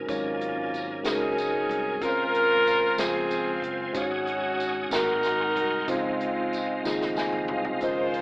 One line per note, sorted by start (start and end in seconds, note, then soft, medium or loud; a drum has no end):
0.00 0.08 G#2 medium
0.00 0.07 G#3 medium
0.00 2.01 C4 soft
0.00 0.08 C#4 medium
0.00 0.08 D#4 medium
0.00 1.04 F#4 medium
0.00 1.11 A#4 medium
0.00 1.98 A#4 medium
0.00 2.03 C5 medium
0.00 4.88 G#5 medium
0.07 1.01 G#1 loud
0.07 1.01 G#2 medium
0.07 0.95 F#3 medium
0.07 0.94 G#3 medium
0.07 1.02 A#3 medium
0.07 0.94 C#4 medium
0.07 1.01 C#4 medium
0.07 0.95 D#4 medium
0.07 1.02 F4 medium
0.07 0.95 C#5 medium
0.07 kick loud
0.07 closed hi-hat medium
0.11 tambourine soft
0.41 closed hi-hat medium
0.74 closed hi-hat soft
0.74 tambourine medium
1.03 1.65 C#2 medium
1.03 1.90 G#3 medium
1.03 1.90 C#4 medium
1.03 1.98 C#4 medium
1.03 1.91 D#4 medium
1.03 1.98 D#4 medium
1.03 1.91 F#4 medium
1.03 1.11 G#4 medium
1.03 2.02 G#4 loud
1.03 snare medium
1.03 closed hi-hat medium
1.03 tambourine loud
1.11 1.94 A#4 medium
1.38 closed hi-hat medium
1.38 tambourine medium
1.69 1.99 C2 medium
1.69 kick medium
1.69 closed hi-hat medium
2.00 2.94 C#2 loud
2.00 2.94 C#3 medium
2.00 2.87 G#3 medium
2.00 2.87 C4 medium
2.00 2.88 C#4 medium
2.00 2.88 F4 medium
2.00 2.95 F4 medium
2.00 2.99 A#4 loud
2.00 2.09 A#4 medium
2.00 3.93 C5 medium
2.00 3.93 F5 medium
2.00 kick loud
2.00 closed hi-hat medium
2.00 tambourine medium
2.10 2.92 C5 medium
2.35 closed hi-hat medium
2.67 closed hi-hat soft
2.67 tambourine medium
2.96 3.58 F2 medium
2.96 3.84 C#3 medium
2.96 3.84 G#3 medium
2.96 3.84 C4 medium
2.96 3.91 C4 medium
2.96 3.85 F4 medium
2.96 3.91 F4 medium
2.96 3.72 G#4 loud
2.96 3.85 C5 medium
2.96 snare loud
2.96 closed hi-hat medium
2.96 tambourine medium
3.31 closed hi-hat medium
3.31 tambourine medium
3.62 3.92 F#1 medium
3.62 kick medium
3.62 closed hi-hat medium
3.93 4.87 G#1 loud
3.93 4.87 G#2 medium
3.93 4.80 G#3 medium
3.93 4.80 C#4 medium
3.93 4.81 D#4 medium
3.93 4.81 F#4 medium
3.93 4.02 C5 medium
3.93 4.91 C#5 medium
3.93 kick loud
3.93 closed hi-hat medium
3.93 tambourine soft
3.97 4.89 C#4 medium
3.97 4.88 D#4 medium
3.97 4.89 F#4 loud
3.97 5.87 F#5 medium
3.97 4.91 D#6 medium
4.02 4.85 C#5 medium
4.27 closed hi-hat medium
4.60 closed hi-hat soft
4.60 tambourine medium
4.90 5.52 G#1 loud
4.90 5.84 G#2 medium
4.90 5.77 G#3 medium
4.90 5.77 C4 medium
4.90 5.78 D#4 medium
4.90 5.85 D#4 medium
4.90 5.78 F#4 medium
4.90 5.85 F#4 medium
4.90 5.88 A#4 medium
4.90 5.79 A#4 medium
4.90 5.89 A#4 loud
4.90 5.88 G#5 medium
4.90 5.88 C6 medium
4.90 snare loud
4.90 closed hi-hat medium
4.90 tambourine loud
5.23 closed hi-hat medium
5.23 tambourine medium
5.56 5.86 C2 medium
5.56 kick medium
5.56 closed hi-hat medium
5.86 6.81 C#2 loud
5.86 6.81 C#3 medium
5.86 6.74 G#3 medium
5.86 6.74 C4 medium
5.86 7.81 C4 medium
5.86 6.75 D#4 medium
5.86 6.75 F4 medium
5.86 6.76 C5 medium
5.86 7.81 D#5 medium
5.86 7.81 F5 medium
5.86 kick loud
5.86 closed hi-hat medium
5.86 tambourine soft
5.91 7.15 G#3 medium
5.91 7.15 C4 medium
5.91 7.19 F4 medium
6.21 closed hi-hat medium
6.53 closed hi-hat soft
6.53 tambourine medium
6.84 7.46 D#2 loud
6.84 7.72 C#3 medium
6.84 7.71 G#3 medium
6.84 7.72 D#4 medium
6.84 7.72 F4 medium
6.84 7.73 G#4 medium
6.84 snare medium
6.84 tambourine medium
7.01 snare medium
7.16 7.48 G#5 medium
7.16 snare medium
7.16 tambourine medium
7.33 mid tom medium
7.48 7.80 C2 medium
7.48 7.80 F5 medium
7.48 floor tom loud
7.65 floor tom medium
7.81 8.22 C#2 loud
7.81 8.22 C#3 medium
7.81 8.22 D#3 medium
7.81 8.22 F3 soft
7.81 8.22 G#3 medium
7.81 8.22 C#4 medium
7.81 8.22 D#4 medium
7.81 8.22 F4 medium
7.81 8.22 C5 medium
7.81 8.22 D#5 medium
7.81 kick loud
7.81 closed hi-hat medium
7.81 tambourine soft
8.14 closed hi-hat soft